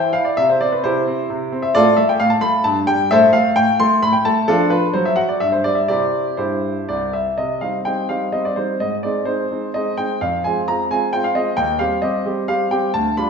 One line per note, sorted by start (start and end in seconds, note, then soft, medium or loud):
0.00 0.13 E3 medium
0.00 0.12 C5 medium
0.00 0.12 E5 medium
0.00 0.13 G5 medium
0.13 0.36 E4 medium
0.13 0.25 F5 medium
0.25 0.37 D5 medium
0.37 0.60 C3 medium
0.37 0.49 E5 loud
0.50 0.61 C5 medium
0.61 0.83 C4 soft
0.61 0.72 D5 medium
0.72 0.83 B4 medium
0.84 1.06 C3 medium
0.84 1.60 E4 medium
0.84 1.60 G4 medium
0.84 1.31 C5 medium
1.08 1.29 C4 medium
1.30 1.51 C3 medium
1.52 1.74 C4 medium
1.62 1.74 E5 medium
1.75 1.97 A2 medium
1.75 1.96 F4 medium
1.75 1.96 A4 medium
1.75 1.95 D5 loud
1.97 2.19 A3 medium
1.97 2.08 E5 medium
2.09 2.20 G5 medium
2.20 2.42 A2 medium
2.20 2.31 F5 loud
2.30 2.41 A5 medium
2.41 2.64 A3 medium
2.41 2.64 B5 loud
2.64 2.87 G2 medium
2.64 2.78 A5 medium
2.87 3.09 G3 medium
2.87 3.10 G5 loud
3.11 3.33 A2 medium
3.11 3.32 A4 medium
3.11 3.32 C5 medium
3.11 3.24 E5 loud
3.33 3.55 A3 medium
3.33 3.56 F5 loud
3.56 3.78 A2 medium
3.56 3.76 G5 loud
3.80 4.02 A3 medium
3.80 4.02 C6 loud
4.02 4.24 A2 medium
4.02 4.13 B5 loud
4.13 4.24 G5 medium
4.25 4.48 A3 medium
4.25 4.48 A5 loud
4.48 4.71 F3 medium
4.48 4.70 D4 medium
4.48 4.69 F4 medium
4.48 4.69 A4 loud
4.70 4.94 F4 medium
4.70 4.85 B4 medium
4.94 5.17 F#3 medium
4.94 5.06 C5 medium
5.05 5.18 E5 medium
5.16 5.40 F#4 medium
5.16 5.29 F#5 medium
5.29 5.41 D5 medium
5.40 5.64 G2 medium
5.40 5.53 E5 medium
5.52 5.65 C5 medium
5.64 5.89 G3 soft
5.64 5.77 D5 medium
5.75 5.89 E5 medium
5.88 6.24 C3 medium
5.88 6.29 C4 soft
5.88 6.29 E4 soft
5.88 6.36 G4 medium
5.88 6.38 D5 medium
6.37 6.73 G2 soft
6.37 7.09 E4 soft
6.37 7.09 G4 soft
6.37 7.12 C5 medium
6.89 7.24 C2 soft
6.89 7.13 D5 medium
7.13 7.38 E5 medium
7.38 7.61 C3 soft
7.38 7.59 D#5 medium
7.61 7.79 G3 soft
7.61 7.79 C4 soft
7.61 7.80 D#4 soft
7.61 7.76 F5 medium
7.85 8.03 G3 soft
7.85 8.03 C4 soft
7.85 8.03 D#4 soft
7.85 8.09 G5 medium
8.09 8.26 G3 soft
8.09 8.27 C4 soft
8.09 8.27 D#4 soft
8.09 8.32 F5 medium
8.32 8.49 G3 soft
8.32 8.50 C4 soft
8.32 8.50 D#4 soft
8.32 8.44 D#5 medium
8.45 8.56 D5 medium
8.56 8.74 G3 soft
8.56 8.74 C4 soft
8.56 8.74 D#4 soft
8.56 8.79 C5 medium
8.80 9.03 G#2 soft
8.80 8.94 D#5 medium
9.03 9.21 G#3 soft
9.03 9.21 C4 soft
9.03 9.21 D#4 soft
9.03 9.26 D5 medium
9.25 9.43 G#3 soft
9.25 9.43 C4 soft
9.25 9.44 D#4 soft
9.25 9.69 C5 medium
9.51 9.67 G#3 soft
9.51 9.68 C4 soft
9.51 9.68 D#4 soft
9.74 9.91 G#3 soft
9.74 9.91 C4 soft
9.74 9.92 D#4 soft
9.74 9.95 D#5 medium
9.97 10.14 G#3 soft
9.97 10.14 C4 soft
9.97 10.15 D#4 soft
9.97 10.20 G5 medium
10.21 10.43 F2 soft
10.21 10.44 F5 medium
10.44 10.61 G#3 soft
10.44 10.62 C4 soft
10.44 10.62 F4 soft
10.44 10.58 G#5 medium
10.68 10.84 G#3 soft
10.68 10.85 C4 soft
10.68 10.84 F4 soft
10.68 10.81 A#5 medium
10.91 11.07 G#3 soft
10.91 11.07 C4 soft
10.91 11.08 F4 soft
10.91 11.11 G#5 medium
11.13 11.29 G#3 soft
11.13 11.30 C4 soft
11.13 11.29 F4 soft
11.13 11.24 G5 medium
11.24 11.35 F5 medium
11.35 11.52 G#3 soft
11.35 11.52 C4 soft
11.35 11.52 F4 soft
11.35 11.55 D#5 medium
11.57 11.80 D#2 medium
11.57 11.80 G5 medium
11.79 11.96 G3 soft
11.79 11.97 C4 soft
11.79 11.97 G4 soft
11.79 12.00 F5 medium
12.02 12.19 G3 soft
12.02 12.20 C4 soft
12.02 12.20 G4 soft
12.02 12.30 D#5 medium
12.25 12.42 G3 soft
12.25 12.42 C4 soft
12.25 12.43 G4 soft
12.48 12.65 G3 soft
12.48 12.66 C4 soft
12.48 12.65 G4 soft
12.48 12.69 F5 medium
12.71 12.88 G3 soft
12.71 12.88 C4 soft
12.71 12.88 G4 soft
12.71 12.92 G5 medium
12.94 13.17 D2 medium
12.94 13.15 A5 medium
13.17 13.30 G3 soft
13.17 13.30 D4 soft
13.17 13.30 F4 soft
13.17 13.30 B5 medium